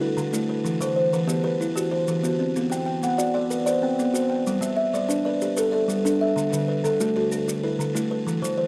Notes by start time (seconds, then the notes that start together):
Already playing: E4 F#4
0.01 E4 B4
0.17 D3, maracas
0.33 A3 E4, maracas
0.49 B4
0.65 E3, maracas
0.81 E3 C5, maracas
0.96 C5
1.13 E3 B4, maracas
1.28 B3 G4, maracas
1.44 G4 B4
1.61 E4, maracas
1.76 F#4 G4, maracas
1.91 F#4 C5
2.08 E3, maracas
2.23 B3 F#4, maracas
2.39 C4
2.56 B3, maracas
2.70 B3 G5, maracas
2.86 G5
3.03 B3 F#5, maracas
3.18 F#4 D5, maracas
3.34 D5 F#5
3.51 B4, maracas
3.66 C5 D5, maracas
3.82 C4 G5
3.99 B3, maracas
4.14 F#4 C5, maracas
4.30 G5
4.47 G3, maracas
4.61 G3 E5, maracas
4.77 E5
4.94 G3 D5, maracas
5.09 D4 B4, maracas
5.25 B4 D5
5.41 G4, maracas
5.57 A4 B4, maracas
5.72 A4 E5
5.88 G3, maracas
6.05 D4 A4, maracas
6.21 E5
6.36 D3, maracas
6.52 D3 B4, maracas
6.68 B4
6.84 D3 A4, maracas
7.00 A3 F#4, maracas
7.16 F#4 A4
7.32 D4, maracas
7.48 F#4, maracas
7.64 E4 B4
7.79 D3, maracas
7.95 A3 E4, maracas
8.11 B4
8.27 E3, maracas
8.42 E3 C5, maracas
8.58 C5